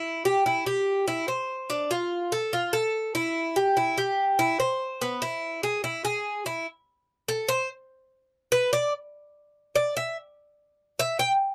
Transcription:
X:1
M:4/4
L:1/8
Q:1/4=145
K:Ephr
V:1 name="Cuban tres"
E G E G2 E c2 | D F2 A F A2 E- | E G E G2 E c2 | B, E2 ^G E G2 E |
z3 A c z3 | z B d z4 d | e z4 e g z |]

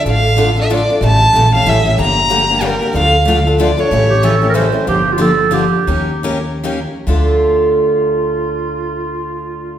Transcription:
X:1
M:3/4
L:1/16
Q:"Swing" 1/4=187
K:Dm
V:1 name="Violin"
f6 e2 d4 | a6 f2 e4 | b8 B4 | f6 z2 d2 ^c2- |
^c8 z4 | z12 | z12 | z12 |
z12 |]
V:2 name="Clarinet"
z12 | z12 | z12 | z12 |
z2 G2 A3 B ^B4 | G3 F A4 G4- | G4 z8 | F12- |
F12 |]
V:3 name="Steel-string acoustic guitar"
[D,A,DFA]2 z2 [D,A,DFA]2 [DFA]2 [D,A,DFA]2 [DFA]2 | [^C,E,A,^CG]2 z2 [C,E,A,CG]2 [A,CG]2 [C,E,A,CG]2 [A,CG]2 | [D,G,B,DG]2 z2 [D,G,B,DG]2 [B,DG]2 [D,G,B,DG]2 [B,DG]2 | [D,A,DFA]2 z2 [D,A,DFA]2 [DFA]2 [D,A,DFA]2 [DFA]2 |
[^C,E,A,^CG]2 z2 [C,E,A,CG]2 [A,CG]2 [C,E,A,CG]2 [A,CG]2 | [D,F,B,DG]2 z2 [D,F,B,DG]2 z2 [D,F,B,DG]2 z2 | [_E,B,_DGB]2 z2 [E,B,DGB]2 z2 [E,B,DGB]2 z2 | [D,A,DFA]12- |
[D,A,DFA]12 |]
V:4 name="Steel-string acoustic guitar"
[D,A,DFA]2 z2 [D,A,DFA]2 z2 [D,A,DFA]2 z2 | [E,G,^CEA]2 z2 [E,G,CEA]2 z2 [E,G,CEA]2 z2 | [D,G,B,DG]2 z2 [D,G,B,DG]2 z2 [D,G,B,DG]2 z2 | [D,A,DFA]2 z2 [D,A,DFA]2 z2 [D,A,DFA]2 z2 |
[E,G,^CEA]2 z2 [E,G,CEA]2 z2 [E,G,CEA]2 z2 | [D,F,B,DG]2 z2 [D,F,B,DG]2 z2 [D,F,B,DG]2 z2 | [_E,B,_DGB]2 z2 [E,B,DGB]2 z2 [E,B,DGB]2 z2 | [D,A,DFA]12- |
[D,A,DFA]12 |]
V:5 name="Upright bass" clef=bass
A,,,12 | A,,,4 B,,,4 A,,,4 | G,,,12 | D,,12 |
A,,,12 | G,,,12 | _E,,12 | D,,12- |
D,,12 |]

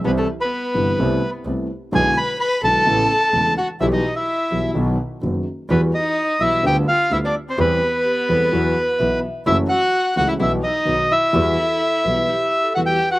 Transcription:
X:1
M:4/4
L:1/16
Q:1/4=128
K:Em
V:1 name="Bandoneon"
B A2 B8 z4 z | ^g2 b2 b2 a8 f2 | e ^d2 e4- e z8 | B2 ^d4 e2 g2 =f2 e =d2 c |
B12- B2 z2 | e2 f4 f e e2 ^d4 e2- | e12 f g2 f |]
V:2 name="Vibraphone"
z16 | z16 | z16 | z16 |
z4 G2 A2 B4 e3 z | z16 | z2 A4 B2 G3 A B4 |]
V:3 name="Violin"
B, A,2 B,8 z4 z | ^G2 B2 B2 A8 F2 | E ^D2 E4- E z8 | B,2 ^D4 E2 G2 =F2 E =D2 C |
B,12- B,2 z2 | E2 F4 F E E2 ^D4 E2- | E12 F G2 F |]
V:4 name="Grand piano" clef=bass
[C,,C,E,G,E]2 z4 [G,,,G,,C,E,G,E]2 [C,,C,A,B,E]2 z2 [C,,C,A,B,E]2 z2 | [B,,,B,,D,^G,B,E]2 z4 [B,,,B,,D,G,B,E]2 [A,,,A,,^C,A,B,E]2 z2 [E,,,E,,C,A,B,E]2 z2 | [B,,,B,,E,G,B,G]2 z4 [B,,,B,,E,G,B,G]2 [B,,,B,,^D,F,B,F]2 z2 [F,,,F,,D,F,B,F]2 z2 | [E,,E,G,B,F]2 z4 [B,,,B,,E,G,B,F]2 [D,,D,G,B,=F]2 z2 [D,,D,G,B,F]2 z2 |
[E,,E,G,CG]2 z4 [E,,E,G,CG]2 [E,,E,F,B,F]2 z2 [B,,,B,,E,F,B,F]2 z2 | [F,,E,F,A,^CF]2 z4 [^C,,^C,E,A,CF]2 [B,,,B,,E,G,B,G]2 z2 [B,,,B,,^D,F,B,F]2 z2 | [E,,E,G,B,F]2 z4 [B,,,B,,E,G,B,F]2 z4 [E,,E,G,B,F]2 z2 |]
V:5 name="Double bass" clef=bass
C,,2 z4 G,,,2 C,,2 z2 C,,2 z2 | B,,,2 z4 B,,,2 A,,,2 z2 E,,,2 z2 | B,,,2 z4 B,,,2 B,,,2 z2 F,,,2 z2 | E,,2 z4 B,,,2 D,,2 z2 D,,2 z2 |
E,,2 z4 E,,2 E,,2 z2 B,,,2 z2 | F,,,2 z4 ^C,,2 B,,,2 z2 B,,,2 z2 | E,,2 z4 B,,,2 z8 |]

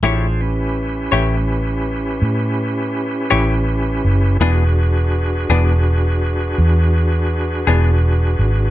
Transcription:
X:1
M:12/8
L:1/8
Q:3/8=55
K:Edor
V:1 name="Tonewheel organ"
[D=F^G=c] [^CE=GB]8- [CEGB]3 | [DF^GB]12 |]
V:2 name="Clean electric guitar"
[A,EGc] z2 [A,EGc] z4 z [A,EGc] z2 | [E,B,D^G] z2 [E,B,DG] z4 z [E,B,DG] z2 |]
V:3 name="Fingered electric bass" clef=bass
A,,,3 A,,,3 A,,3 A,,,2 F,,, | E,,,3 E,,,3 E,,3 E,,,2 ^G,,, |]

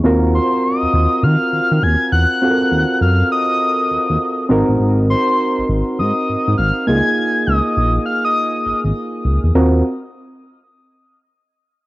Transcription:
X:1
M:4/4
L:1/16
Q:"Swing 16ths" 1/4=101
K:Ebdor
V:1 name="Soft synth lead"
z2 c'2 e'4 f'4 a'2 g'2- | g'4 f'2 e'8 z2 | z2 c'4 z2 e'4 f'2 a'2- | a'2 e'4 f' e'4 z4 z |
z16 |]
V:2 name="Synth keys"
[CFGB]16 | [CFG=AB]12- [CFGAB]2 [CEGB]2- | [CEGB]12- [CEGB]2 [B,EFA]2- | [B,EFA]12- [B,EFA]2 z2 |
[CFGB]2 z12 z2 |]
V:3 name="Analog synth bass" clef=bass
E,,3 z2 E,, E,, z E, z E, E, E,, z _F,, z | z2 E,, z G,,2 z4 E,, E,, z2 A,,, =A,,, | A,,,3 z2 A,,, A,,, z A,, z A,, A,, A,,, z D,, z | z2 D,, z B,,,2 z4 A,,, A,,, z2 D,, _F,, |
E,,2 z12 z2 |]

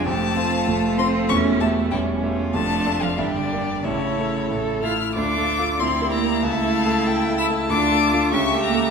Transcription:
X:1
M:2/4
L:1/16
Q:1/4=95
K:Aphr
V:1 name="Violin"
a6 c'2 | ^c'2 a2 g2 z2 | a3 f e d3 | ^c6 f'2 |
d'4 c'2 b2 | a6 e'2 | d'4 ^c'2 b2 |]
V:2 name="Violin"
G2 F6 | E4 E2 F2- | F4 G4 | A6 z2 |
z4 d4 | e2 f2 g2 a2- | a4 e4 |]
V:3 name="Viola"
C4 A,4- | A,4 ^C4 | D4 D4 | E4 A2 E2 |
F4 E4 | E8 | F4 G4 |]
V:4 name="Grand piano"
[F,,,F,,]2 [CFc]2 [F,,,F,,]2 [CFc]2 | [E,,,E,,]2 [A,Ge]2 [E,,,E,,]2 [A,Ge]2 | [F,,,F,,]2 [A,Ad]2 [G,,,G,,]2 [B,Gd]2 | [A,,,A,,]2 [A,EA]2 [A,,,A,,]2 [A,EA]2 |
(3D,,2 [A,FA]2 [A,FA]2 (3D,,2 [B,EG]2 [B,EG]2 | (3^C,,2 [A,EA]2 [A,EA]2 (3[A,EA]2 [A,EA]2 [A,EA]2 | (3D,,2 [A,FA]2 [A,FA]2 (3^C,,2 [A,GA]2 [A,GA]2 |]
V:5 name="Cello"
A,6 C2 | ^C2 A,2 G,2 z2 | A,3 F, E, D,3 | ^C,6 F2 |
D4 C2 B,2 | A,6 E2 | D4 ^C2 B,2 |]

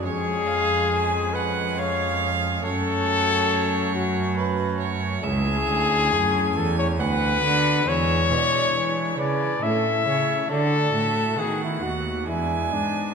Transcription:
X:1
M:3/4
L:1/16
Q:1/4=69
K:F#m
V:1 name="Violin"
c2 ^e2 g2 f2 e4 | c8 B2 c2 | [K:A] e4 g4 f4 | e2 d2 c2 B2 A2 c2 |
d2 e2 f4 g4 |]
V:2 name="Trumpet"
G6 B2 c3 z | A6 F2 z4 | [K:A] G6 A c B4 | c6 d2 e4 |
A4 G E F2 E2 D2 |]
V:3 name="Pipe organ"
[G,CG]12 | [A,CF]12 | [K:A] [A,CE]8 [B,F]4 | [G,DE]8 [A,CE]4 |
[A,F]4 [A,B,F]4 [G,B,D]4 |]
V:4 name="Pipe organ" clef=bass
^E,,12 | F,,12 | [K:A] C,,2 D,,2 F,,2 E,,2 D,,2 D,2 | E,,2 B,,2 E,2 C,2 A,,2 C,2 |
D,2 A,,2 ^D,2 ^D,,2 E,,2 G,,2 |]
V:5 name="Cello" clef=bass
^E,,12 | F,,12 | [K:A] C,,2 D,,2 F,,2 E,,2 D,,2 D,2 | E,,2 B,,2 E,2 C,2 A,,2 C,2 |
D,2 A,,2 ^D,2 ^D,,2 E,,2 G,,2 |]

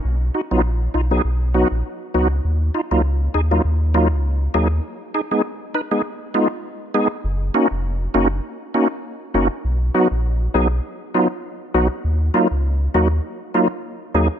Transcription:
X:1
M:4/4
L:1/16
Q:"Swing 16ths" 1/4=100
K:F#
V:1 name="Tonewheel organ"
z2 [DF] [F,B,DE] z2 [DE] [F,B,DG] z2 [F,B,DF] z3 [F,B,DF] z | z2 [DE] [F,A,DE] z2 [DG] [F,A,DE] z2 [F,A,DE] z3 [F,A,DG] z | z2 [DG] [G,B,DG] z2 [DB] [G,B,DG] z2 [G,B,DE] z3 [G,B,DG] z | z2 [A,CDF] z3 [A,CDF] z3 [A,CDF] z3 [A,CDF] z |
z2 [F,B,DF] z3 [F,B,DG] z3 [F,B,DE] z3 [F,B,DF] z | z2 [F,A,DE] z3 [F,A,DF] z3 [F,A,DE] z3 [F,A,DG] z |]
V:2 name="Sub bass" clef=bass
B,,,2 z A,,,3 B,,,2 B,,,3 A,,, z2 C,,2 | D,,2 z C,,3 D,,2 D,,3 C,,3 D,,2 | z16 | F,,,2 z E,,,3 F,,,2 z6 F,,, z |
B,,,2 z A,,,3 B,,,2 z6 B,,, z | D,,2 z C,,3 D,,2 z6 D,, z |]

